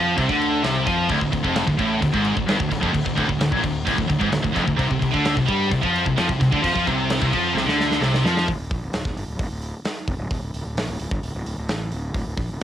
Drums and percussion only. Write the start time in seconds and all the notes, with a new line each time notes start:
0.18 kick, crash
0.29 kick
0.41 crash
0.64 snare, crash
0.87 kick, snare, crash
1.09 kick, crash
1.21 kick
1.33 kick, crash
1.44 kick
1.56 snare, crash
1.68 kick
1.79 kick, crash
2.02 kick, crash
2.14 kick
2.25 crash
2.37 kick
2.48 snare, crash
2.60 kick
2.72 kick, snare, crash
2.83 kick
2.95 kick, crash
3.06 kick
3.18 kick, crash
3.29 kick
3.41 snare, crash
3.52 kick
3.64 kick, crash
3.87 kick, crash
3.98 kick
4.10 kick, crash
4.21 kick
4.32 snare, crash
4.44 kick
4.56 kick, snare, crash
4.68 kick
4.79 kick, crash
4.91 kick
5.02 kick, crash
5.14 kick
5.25 snare, crash
5.37 kick
5.48 kick, crash
5.71 kick, crash
5.83 kick
5.95 crash
6.06 kick
6.17 snare, crash
6.29 kick
6.41 kick, snare, crash
6.52 kick
6.64 kick, crash
6.75 kick
6.87 kick, crash
7.10 snare, crash
7.22 kick
7.33 kick, crash
7.57 snare
7.69 snare
7.80 snare
7.91 snare
8.02 snare
8.14 snare
8.25 snare
8.37 snare
8.48 kick, open hi-hat
8.71 kick, open hi-hat
8.93 snare, open hi-hat
9.05 kick, snare
9.17 open hi-hat
9.39 kick, open hi-hat
9.62 open hi-hat
9.85 snare, open hi-hat
10.08 kick, open hi-hat
10.31 kick, open hi-hat
10.54 open hi-hat
10.78 snare, open hi-hat
11.00 open hi-hat
11.11 kick
11.23 open hi-hat
11.46 open hi-hat
11.69 snare, open hi-hat
11.92 open hi-hat
12.15 kick, open hi-hat
12.38 kick, open hi-hat